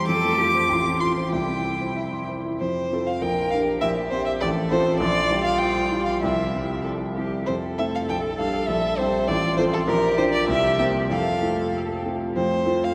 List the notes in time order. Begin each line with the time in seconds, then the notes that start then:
Already playing: G3 G4 C5
0.07 F2 A4 D6
0.25 A3
0.38 F4 G4
0.55 C5
0.69 A1 F4
0.86 C4
1.00 F4 C6
1.17 C5
1.31 C2 E4 G5
1.48 C4
1.65 E4
1.81 C5
1.96 E5
2.13 C6
2.29 C5
2.45 E4
2.60 F2 C5
2.92 C4 F4 A4
3.07 F5
3.20 A#1 A#4 G5
3.51 D4 G4 A#4 F5
3.80 A#1 G4 E5
4.10 C4 G4 C5
4.26 E5
4.40 A1 A4 D5
4.70 C4 F4 A4 C5
4.99 A#1 F4 D5
5.30 G3 F4 G4
5.44 F5
5.58 G5
5.91 G3 F4 G4
6.05 F5
6.21 C2 E4 E5
6.55 G3 C4 G4
6.83 A4
7.16 G3 C4 G4
7.46 F2 A4 C5
7.78 A3 C4 F4 E5
7.95 F5
8.09 A#1 G5
8.39 G3 D4 G4 F5
8.67 A#1 E5
8.98 G3 C4 G4 C5
9.28 A1 F4 D5
9.57 F3 C4 A4 C5
9.73 A4
9.87 A#1 G4 A#4
10.17 F3 D4 G4 C5
10.33 D5
10.48 C2 G4 E5
10.78 A#3 C4 G4 E5
11.10 F2 A4 F5
11.42 A3 C4 F4
12.05 A3 C4 F4
12.35 F2 A3 C5
12.65 A3 C4 F4
12.84 F5